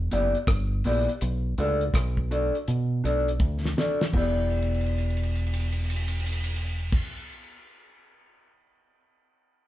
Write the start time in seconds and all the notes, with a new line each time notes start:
0.11 F#1 B3 E4 G4 D5, closed hi-hat
0.35 closed hi-hat
0.47 G1, kick, cross-stick, closed hi-hat
0.84 A#1 B3 E4 G4 D5, open hi-hat
1.09 closed hi-hat
1.21 B1, closed hi-hat
1.58 C#2 D4 F#4 A4 D5, closed hi-hat
1.81 closed hi-hat
1.94 B1, kick, cross-stick, closed hi-hat
2.17 kick
2.31 D4 F#4 A4 D5, closed hi-hat
2.55 closed hi-hat
2.68 B2, closed hi-hat
3.04 B1 D4 F#4 A4 D5, closed hi-hat
3.28 closed hi-hat
3.40 D2, kick
3.65 snare
3.77 D4 F#4 A4 D5, snare
4.01 snare
4.12 E1 B3 E4 G4, kick, crash
4.17 D5
4.50 crash
4.62 ride
4.74 crash
4.81 ride
4.86 crash
4.98 ride
5.10 crash
5.17 ride
5.23 crash
5.35 ride
5.46 crash
5.53 ride
5.60 crash
5.72 ride
5.84 crash
5.90 ride
5.96 crash
6.08 ride
6.20 crash
6.26 ride
6.32 crash
6.44 ride
6.56 crash
6.92 kick, crash